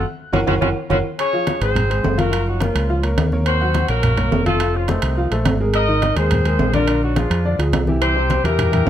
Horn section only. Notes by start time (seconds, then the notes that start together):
0.33 F#3 C#4 F4 F#4
0.47 F#3 C#4 F4 F#4
0.61 F#3 C#4 F4 F#4
0.91 F#3 C#4 F4 F#4
1.19 C#4 G#4 C#5
1.63 C4 G#4 C5
2.20 A#3 F#4 A#4
2.48 F#3 D#4 F#4
2.62 F3 C#4 F4
3.47 C4 F#4 C5
3.90 A#3 F#4 A#4
4.47 A3 F4 A4
4.76 F3 C#4 F4
4.90 D#3 C4 D#4
5.75 D#4 A#4 D#5
6.17 C4 G#4 C5
6.74 A#3 F4 A#4
7.03 F#3 D#4 F#4
7.18 F3 D4 F4
8.02 C4 G4 C5
8.44 A#3 G4 A#4